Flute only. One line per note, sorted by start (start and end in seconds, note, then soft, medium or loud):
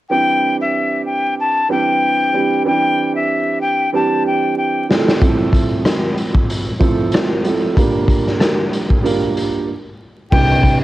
0.10 0.57 G5 loud
0.61 1.04 E5 medium
1.06 1.35 G5 medium
1.40 1.68 A5 medium
1.71 2.63 G5 medium
2.67 3.13 G5 loud
3.15 3.59 E5 medium
3.61 3.90 G5 medium
3.95 4.23 A5 medium
4.27 4.55 G5 medium
4.57 4.86 G5 medium
10.31 10.78 G5 loud